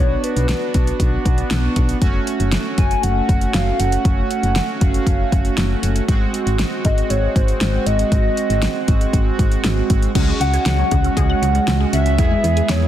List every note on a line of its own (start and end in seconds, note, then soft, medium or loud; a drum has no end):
0.00 0.16 B1 loud
0.00 1.98 B3 medium
0.00 1.98 D4 medium
0.00 1.98 F#4 medium
0.00 0.25 C#5 loud
0.24 1.00 B4 medium
0.24 closed hi-hat medium
0.36 0.54 B1 loud
0.36 closed hi-hat medium
0.49 snare loud
0.49 closed hi-hat medium
0.74 0.92 B1 medium
0.74 kick medium
0.74 closed hi-hat medium
0.87 closed hi-hat soft
1.00 1.18 B1 loud
1.00 kick medium
1.00 closed hi-hat medium
1.25 1.43 B1 loud
1.25 kick loud
1.25 closed hi-hat medium
1.38 closed hi-hat soft
1.51 1.69 B1 medium
1.51 snare loud
1.51 closed hi-hat medium
1.76 1.94 B1 loud
1.76 kick medium
1.76 closed hi-hat medium
1.89 closed hi-hat medium
2.02 2.19 F#1 loud
2.02 6.04 A3 medium
2.02 6.04 C#4 medium
2.02 6.04 F#4 medium
2.02 kick loud
2.02 closed hi-hat medium
2.27 closed hi-hat medium
2.40 2.58 F#1 loud
2.40 closed hi-hat medium
2.52 snare loud
2.52 closed hi-hat medium
2.78 2.96 F#1 medium
2.78 3.05 G#5 loud
2.78 kick medium
2.78 closed hi-hat medium
2.91 closed hi-hat medium
3.03 3.21 F#1 loud
3.03 3.56 F#5 loud
3.03 closed hi-hat medium
3.29 3.47 F#1 medium
3.29 kick medium
3.29 closed hi-hat medium
3.41 closed hi-hat soft
3.54 3.72 F#1 loud
3.54 3.81 F5 loud
3.54 snare loud
3.54 closed hi-hat medium
3.80 3.98 F#1 loud
3.80 4.30 F#5 loud
3.80 closed hi-hat medium
3.92 closed hi-hat medium
4.05 4.23 F#1 loud
4.05 kick loud
4.05 closed hi-hat medium
4.31 4.78 F#5 loud
4.31 closed hi-hat medium
4.43 4.61 F#1 medium
4.43 closed hi-hat medium
4.56 snare loud
4.56 closed hi-hat medium
4.81 4.99 F#1 medium
4.81 5.54 F5 medium
4.81 kick medium
4.81 closed hi-hat medium
4.94 closed hi-hat medium
5.07 5.24 F#1 loud
5.07 kick medium
5.07 closed hi-hat medium
5.32 5.50 F#1 loud
5.32 kick loud
5.32 closed hi-hat medium
5.45 closed hi-hat soft
5.58 5.75 F#1 loud
5.58 snare loud
5.58 closed hi-hat medium
5.83 6.01 F#1 medium
5.83 closed hi-hat medium
5.96 closed hi-hat medium
6.08 6.26 G#1 loud
6.08 10.11 G#3 medium
6.08 10.11 C4 medium
6.08 10.11 F#4 medium
6.08 kick loud
6.08 closed hi-hat medium
6.34 closed hi-hat medium
6.47 6.64 G#1 loud
6.47 closed hi-hat medium
6.59 snare loud
6.59 closed hi-hat medium
6.85 7.03 G#1 loud
6.85 7.12 D#5 loud
6.85 kick medium
6.85 closed hi-hat medium
6.98 closed hi-hat medium
7.10 7.28 G#1 loud
7.10 7.35 C#5 loud
7.10 closed hi-hat medium
7.35 7.53 G#1 loud
7.35 7.88 C5 loud
7.35 kick medium
7.35 closed hi-hat medium
7.48 closed hi-hat soft
7.61 7.79 G#1 loud
7.61 snare loud
7.61 closed hi-hat medium
7.86 8.04 G#1 loud
7.86 9.64 D#5 loud
7.86 closed hi-hat medium
7.99 closed hi-hat medium
8.12 8.30 G#1 loud
8.12 kick loud
8.12 closed hi-hat medium
8.37 closed hi-hat medium
8.50 8.68 G#1 medium
8.50 closed hi-hat medium
8.62 snare loud
8.62 closed hi-hat medium
8.88 9.06 G#1 loud
8.88 kick medium
8.88 closed hi-hat medium
9.01 closed hi-hat medium
9.13 9.31 G#1 medium
9.13 kick medium
9.13 closed hi-hat medium
9.39 9.57 G#1 loud
9.39 kick medium
9.39 closed hi-hat medium
9.52 closed hi-hat soft
9.64 9.82 G#1 loud
9.64 snare loud
9.64 closed hi-hat medium
9.90 10.08 G#1 loud
9.90 kick medium
9.90 closed hi-hat medium
10.02 closed hi-hat medium
10.15 10.33 C#2 loud
10.15 10.23 F#3 medium
10.15 12.88 G#3 medium
10.15 12.15 G#3 medium
10.15 12.16 C#4 medium
10.15 12.15 C#4 medium
10.15 12.16 F#4 medium
10.15 12.15 F#4 medium
10.15 kick loud
10.15 closed hi-hat medium
10.15 crash medium
10.28 10.35 G#3 medium
10.40 10.58 C#2 loud
10.40 11.13 F#5 loud
10.40 closed hi-hat medium
10.53 10.61 G#4 medium
10.53 closed hi-hat medium
10.66 10.84 C#2 loud
10.66 10.73 F#5 medium
10.66 snare loud
10.66 closed hi-hat medium
10.79 10.86 F#3 medium
10.91 11.09 C#2 loud
10.91 10.99 G#3 medium
10.91 kick medium
10.91 closed hi-hat medium
11.04 11.12 C#4 medium
11.04 closed hi-hat medium
11.17 11.35 C#2 loud
11.17 11.24 G#4 loud
11.17 11.89 F#5 loud
11.17 kick medium
11.17 closed hi-hat medium
11.30 11.37 F#5 medium
11.42 11.60 C#2 loud
11.42 11.50 F#3 medium
11.42 closed hi-hat medium
11.55 11.63 G#3 medium
11.55 closed hi-hat soft
11.68 11.85 C#2 loud
11.68 11.75 C#4 medium
11.68 snare loud
11.68 closed hi-hat medium
11.80 11.88 G#4 medium
11.93 12.20 C#2 loud
11.93 12.71 E5 loud
11.93 12.01 F#5 medium
11.93 closed hi-hat medium
12.06 closed hi-hat medium
12.18 12.36 E2 loud
12.18 12.26 E3 medium
12.18 12.88 B3 medium
12.18 12.88 E4 medium
12.18 12.88 G#4 medium
12.18 kick loud
12.18 closed hi-hat medium
12.31 12.39 G#3 medium
12.44 12.62 E2 loud
12.44 closed hi-hat medium
12.57 12.64 G#4 medium
12.57 closed hi-hat medium
12.69 12.87 E2 loud
12.69 12.88 C#5 medium
12.69 12.77 E5 loud
12.69 snare loud
12.69 closed hi-hat medium
12.82 12.88 E3 medium